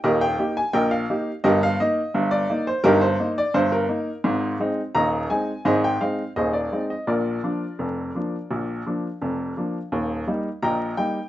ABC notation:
X:1
M:2/4
L:1/16
Q:1/4=85
K:Eb
V:1 name="Upright piano"
[GBe] g2 a [Beg] f3 | [GBe] f e3 d2 c | [EGB] c2 d c B3 | z4 [eb]2 a2 |
[Ace] g f2 [Ace] d2 e | [FBd]8- | [FBd]4 z4 | z4 [egb]2 g2 |]
V:2 name="Upright piano" clef=bass
[E,,,E,,]2 [B,EG]2 [B,,,B,,]2 [B,EG]2 | [G,,,G,,]2 [B,E]2 [G,,,G,,]2 [B,E]2 | [G,,,G,,]2 [B,E]2 [G,,,G,,]2 [B,E]2 | [A,,,A,,]2 [A,CE]2 [E,,,E,,]2 [A,CE]2 |
[A,,,A,,]2 [A,CE]2 [E,,,E,,]2 [A,CE]2 | [B,,,B,,]2 [F,B,D]2 [F,,,F,,]2 [F,B,D]2 | [B,,,B,,]2 [F,B,D]2 [F,,,F,,]2 [F,B,D]2 | [E,,,E,,]2 [G,B,E]2 [B,,,B,,]2 [G,B,E]2 |]